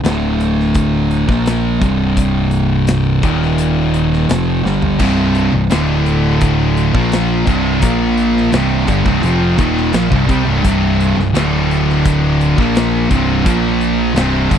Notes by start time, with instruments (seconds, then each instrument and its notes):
0.03 picked electric bass D1, distorted electric guitar D2 A2 D3, snare, closed hi-hat
0.40 closed hi-hat
0.60 snare
0.74 kick, closed hi-hat
1.11 closed hi-hat
1.27 picked electric bass A#1, distorted electric guitar A#2 F3 A#3, kick, snare
1.46 snare, closed hi-hat
1.80 picked electric bass C1, distorted electric guitar C2 G2 C3, kick, closed hi-hat
2.17 kick, closed hi-hat
2.51 closed hi-hat
2.87 snare, closed hi-hat
3.22 picked electric bass D#1, distorted electric guitar D#2 A#2 D#3, kick, closed hi-hat
3.43 snare
3.58 closed hi-hat
3.94 closed hi-hat
4.13 snare
4.28 picked electric bass F1, distorted electric guitar F2 C3 F3, snare, closed hi-hat
4.62 picked electric bass G1, distorted electric guitar G2 D3 G3, snare
4.82 floor tom
4.99 picked electric bass C1, distorted electric guitar C2 G2 C3, kick, crash, splash
5.35 closed hi-hat
5.53 picked electric bass C1, distorted electric guitar C2 G2
5.71 picked electric bass D1, distorted electric guitar D2 A2 D3, snare, closed hi-hat
6.06 closed hi-hat
6.41 kick, closed hi-hat
6.77 closed hi-hat
6.94 picked electric bass A#1, distorted electric guitar A#2 F3 A#3, kick
7.12 snare, closed hi-hat
7.46 picked electric bass C1, distorted electric guitar C2 G2 C3, kick, closed hi-hat
7.82 picked electric bass A#1, distorted electric guitar A#2 F3 A#3, kick, closed hi-hat
8.17 closed hi-hat
8.37 snare
8.51 picked electric bass C1, distorted electric guitar C2 G2 C3, snare, closed hi-hat
8.87 picked electric bass G1, distorted electric guitar G2 D3, kick, closed hi-hat
9.06 picked electric bass C1, distorted electric guitar C2 G2, kick, snare
9.22 picked electric bass F1, distorted electric guitar F2 C3 F3, closed hi-hat
9.57 picked electric bass D#1, distorted electric guitar D#2 A#2 D#3, kick, closed hi-hat
9.77 snare
9.93 picked electric bass A#1, distorted electric guitar A#2 F3, snare, closed hi-hat
10.10 picked electric bass C1, distorted electric guitar C2 G2, kick
10.27 picked electric bass C2, distorted electric guitar C3 G3, kick, closed hi-hat
10.44 picked electric bass C1, distorted electric guitar C2 G2
10.60 distorted electric guitar C2 G2 C3
10.64 picked electric bass C1, kick, closed hi-hat
11.00 closed hi-hat
11.16 picked electric bass C1, distorted electric guitar C2 G2, snare
11.32 picked electric bass D1, distorted electric guitar D2 A2 D3, closed hi-hat
11.37 snare
11.71 closed hi-hat
11.90 snare
12.05 kick, closed hi-hat
12.41 closed hi-hat
12.58 picked electric bass A#1, distorted electric guitar A#2 F3 A#3, kick, snare
12.75 snare, closed hi-hat
13.10 picked electric bass C1, distorted electric guitar C2 G2 C3, kick, closed hi-hat
13.44 picked electric bass A#1, distorted electric guitar A#2 F3 A#3, kick, closed hi-hat
13.81 closed hi-hat
14.14 picked electric bass C1, distorted electric guitar C2 G2 C3, snare, closed hi-hat
14.50 picked electric bass G1, distorted electric guitar G2 D3, kick, closed hi-hat